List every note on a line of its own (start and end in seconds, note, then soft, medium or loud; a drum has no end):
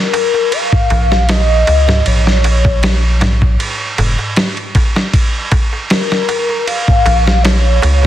0.00 0.54 A#4 medium
0.14 ride medium
0.14 darbuka tek medium
0.34 darbuka tek medium
0.52 1.30 F5 loud
0.52 ride medium
0.52 darbuka tek soft
0.72 kick medium
0.72 darbuka dum medium
0.90 1.64 A#1 medium
0.90 ride medium
0.90 darbuka tek medium
1.11 snare soft
1.11 darbuka tek soft
1.29 2.03 D#5 loud
1.29 snare loud
1.29 ride medium
1.29 darbuka tek soft
1.67 2.02 C#2 medium
1.67 ride medium
1.67 darbuka tek medium
1.88 snare medium
1.88 darbuka tek soft
1.88 darbuka dum medium
2.06 3.57 A#1 medium
2.06 3.18 C#5 loud
2.06 ride medium
2.06 darbuka tek soft
2.27 snare soft
2.44 ride medium
2.44 darbuka tek medium
2.65 kick medium
2.65 darbuka tek medium
2.83 snare loud
2.83 ride medium
2.83 darbuka tek soft
3.21 snare soft
3.21 ride medium
3.21 darbuka tek medium
3.21 darbuka dum medium
3.42 kick medium
3.42 darbuka tek soft
3.59 ride medium
3.59 darbuka tek soft
3.98 4.17 F1 medium
3.98 ride medium
3.98 darbuka tek medium
3.98 darbuka dum medium
4.19 darbuka tek medium
4.36 snare loud
4.36 ride medium
4.36 darbuka tek soft
4.57 ride soft
4.75 kick medium
4.75 ride medium
4.75 darbuka tek medium
4.96 snare soft
4.96 darbuka tek medium
5.13 kick loud
5.13 ride medium
5.13 darbuka tek soft
5.52 kick medium
5.52 ride medium
5.52 darbuka tek medium
5.73 darbuka tek medium
5.90 6.64 A#4 medium
5.90 snare loud
5.90 ride medium
5.90 darbuka tek soft
6.12 snare soft
6.29 ride medium
6.29 darbuka tek medium
6.49 darbuka tek soft
6.67 7.41 F5 loud
6.67 ride medium
6.67 darbuka tek soft
6.88 kick medium
6.88 darbuka dum medium
7.06 7.80 A#1 medium
7.06 ride medium
7.06 darbuka tek loud
7.27 snare soft
7.27 darbuka tek soft
7.44 8.07 C#5 loud
7.44 snare loud
7.44 ride medium
7.44 darbuka tek soft
7.82 8.07 C#2 medium
7.82 ride medium
7.82 darbuka tek loud
8.02 darbuka tek medium
8.02 darbuka dum medium